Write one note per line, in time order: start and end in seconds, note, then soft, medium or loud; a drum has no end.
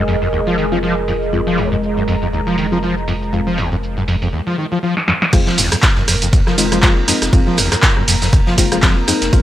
0.00 4.33 F1 medium
0.00 4.33 G#3 medium
0.00 4.33 G#4 medium
0.00 4.33 A#4 medium
0.00 4.33 D#5 medium
0.00 1.67 G#5 medium
0.08 0.16 F2 loud
0.08 open hi-hat loud
0.08 shaker medium
0.22 0.28 F2 medium
0.22 open hi-hat medium
0.22 shaker soft
0.33 0.41 D#2 medium
0.33 shaker soft
0.47 0.56 F3 loud
0.47 shaker soft
0.58 0.66 D#3 medium
0.58 open hi-hat loud
0.58 shaker medium
0.72 0.78 F3 loud
0.72 0.83 G#3 loud
0.72 0.83 C4 medium
0.72 0.83 F4 loud
0.72 shaker soft
0.83 0.94 F3 loud
0.83 shaker soft
0.97 shaker soft
1.08 1.13 F2 medium
1.08 open hi-hat loud
1.08 shaker medium
1.22 shaker soft
1.33 1.41 F2 medium
1.33 2.69 G#3 medium
1.33 2.69 C4 medium
1.33 2.69 F4 medium
1.33 shaker soft
1.47 1.59 F3 loud
1.47 shaker soft
1.52 4.33 A#5 medium
1.58 1.69 D#2 medium
1.58 open hi-hat loud
1.58 shaker medium
1.72 1.76 F2 loud
1.72 shaker soft
1.83 shaker soft
1.97 2.03 F#2 medium
1.97 shaker soft
2.08 2.16 F2 loud
2.08 open hi-hat loud
2.08 shaker medium
2.22 2.28 F2 medium
2.22 shaker soft
2.33 2.41 D#2 medium
2.33 shaker soft
2.47 2.56 F3 loud
2.47 shaker soft
2.58 2.66 D#3 medium
2.58 open hi-hat loud
2.58 shaker medium
2.72 2.78 F3 medium
2.72 2.83 G#3 loud
2.72 2.83 C4 medium
2.72 2.83 F4 loud
2.72 shaker soft
2.83 2.94 F3 loud
2.83 shaker soft
2.97 shaker soft
3.08 3.12 F2 medium
3.08 open hi-hat loud
3.08 shaker medium
3.22 shaker soft
3.33 3.41 F2 medium
3.33 4.33 G#3 medium
3.33 4.33 C4 medium
3.33 4.33 F4 medium
3.33 shaker soft
3.47 3.59 F3 loud
3.47 shaker soft
3.58 3.69 D#2 medium
3.58 open hi-hat loud
3.58 shaker medium
3.72 3.76 F2 loud
3.72 shaker soft
3.83 shaker soft
3.97 4.03 F#2 medium
3.97 shaker soft
4.08 4.16 F2 loud
4.08 open hi-hat loud
4.08 shaker medium
4.22 4.28 F2 medium
4.22 open hi-hat medium
4.22 shaker soft
4.33 4.41 D#2 medium
4.47 4.56 F3 loud
4.58 4.66 D#3 medium
4.72 4.78 F3 loud
4.83 4.94 F3 loud
4.97 snare soft
5.08 5.12 F2 medium
5.08 snare medium
5.22 snare medium
5.33 5.52 F1 loud
5.33 5.41 F2 medium
5.33 6.56 G#3 medium
5.33 9.42 A#3 medium
5.33 6.56 C4 medium
5.33 6.56 F4 medium
5.33 9.42 A#4 medium
5.33 kick loud
5.33 cross-stick medium
5.33 closed hi-hat medium
5.33 crash loud
5.33 ride medium
5.33 shaker soft
5.47 5.59 F3 loud
5.47 snare medium
5.58 5.68 F1 loud
5.58 5.69 D#2 medium
5.58 open hi-hat medium
5.58 open hi-hat loud
5.58 shaker medium
5.72 5.76 F2 loud
5.72 cross-stick medium
5.72 closed hi-hat medium
5.72 shaker soft
5.82 kick loud
5.82 snare loud
5.82 clap loud
5.82 closed hi-hat medium
5.82 ride medium
5.82 shaker soft
5.96 6.41 F1 medium
5.96 6.03 F#2 medium
5.96 snare soft
6.08 6.16 F2 loud
6.08 cross-stick medium
6.08 open hi-hat loud
6.08 ride medium
6.08 shaker medium
6.22 6.28 F2 medium
6.22 closed hi-hat medium
6.22 shaker soft
6.33 6.41 D#2 medium
6.33 kick loud
6.33 closed hi-hat medium
6.33 ride medium
6.33 shaker soft
6.47 7.03 F1 medium
6.47 6.56 F3 loud
6.47 cross-stick medium
6.47 snare medium
6.58 6.66 D#3 medium
6.58 6.70 G#3 medium
6.58 6.70 C4 medium
6.58 6.70 F4 loud
6.58 open hi-hat loud
6.58 ride medium
6.58 shaker medium
6.72 6.78 F3 loud
6.72 6.81 G#3 medium
6.72 6.81 C4 medium
6.72 6.81 F4 loud
6.72 cross-stick medium
6.72 closed hi-hat medium
6.72 shaker soft
6.83 6.94 F3 loud
6.83 7.04 G#3 medium
6.83 7.04 C4 medium
6.83 7.04 F4 medium
6.83 kick loud
6.83 cross-stick medium
6.83 snare loud
6.83 clap loud
6.83 closed hi-hat medium
6.83 ride medium
6.83 shaker soft
7.08 7.12 F2 medium
7.08 7.29 G#3 loud
7.08 7.29 C4 medium
7.08 7.29 D#4 loud
7.08 cross-stick medium
7.08 open hi-hat loud
7.08 ride medium
7.08 shaker medium
7.22 7.30 F1 medium
7.22 cross-stick medium
7.22 snare soft
7.22 closed hi-hat medium
7.22 shaker soft
7.33 7.52 F1 loud
7.33 7.41 F2 medium
7.33 8.56 G#3 medium
7.33 8.56 C4 medium
7.33 8.56 F4 medium
7.33 kick loud
7.33 closed hi-hat medium
7.33 ride medium
7.33 shaker soft
7.47 7.59 F3 loud
7.57 7.68 F1 loud
7.57 7.69 D#2 medium
7.57 cross-stick medium
7.57 open hi-hat loud
7.57 ride medium
7.57 shaker medium
7.72 7.76 F2 loud
7.72 cross-stick medium
7.72 snare soft
7.72 clap soft
7.72 closed hi-hat medium
7.72 shaker soft
7.82 kick loud
7.82 snare loud
7.82 clap loud
7.82 closed hi-hat medium
7.82 ride medium
7.82 shaker soft
7.97 8.41 F1 medium
7.97 8.03 F#2 medium
7.97 cross-stick medium
8.08 8.16 F2 loud
8.08 open hi-hat loud
8.08 ride medium
8.08 shaker medium
8.22 8.28 F2 medium
8.22 snare medium
8.22 open hi-hat medium
8.22 shaker soft
8.33 8.41 D#2 medium
8.33 kick loud
8.33 cross-stick medium
8.33 closed hi-hat medium
8.33 ride medium
8.33 shaker soft
8.47 9.03 F1 medium
8.47 8.56 F3 loud
8.47 snare soft
8.58 8.66 D#3 medium
8.58 8.70 G#3 medium
8.58 8.70 C4 medium
8.58 8.70 F4 loud
8.58 kick medium
8.58 open hi-hat loud
8.58 ride medium
8.58 shaker medium
8.72 8.78 F3 loud
8.72 8.81 G#3 medium
8.72 8.81 C4 medium
8.72 8.81 F4 loud
8.72 cross-stick medium
8.72 closed hi-hat medium
8.72 ride soft
8.72 shaker soft
8.82 8.94 F3 loud
8.82 9.04 G#3 medium
8.82 9.04 C4 medium
8.82 kick loud
8.82 snare loud
8.82 clap loud
8.82 closed hi-hat medium
8.82 ride medium
8.82 shaker soft
9.08 9.12 F2 medium
9.08 9.29 G#3 medium
9.08 9.29 C4 medium
9.08 9.29 D#4 loud
9.08 cross-stick medium
9.08 open hi-hat loud
9.08 ride medium
9.08 shaker medium
9.22 9.30 F1 medium
9.22 snare medium
9.22 closed hi-hat medium
9.22 shaker soft
9.33 9.42 F1 loud
9.33 9.41 F2 medium
9.33 9.42 G#3 medium
9.33 9.42 C4 medium
9.33 9.42 F4 medium
9.33 kick loud
9.33 closed hi-hat medium
9.33 ride medium
9.33 shaker soft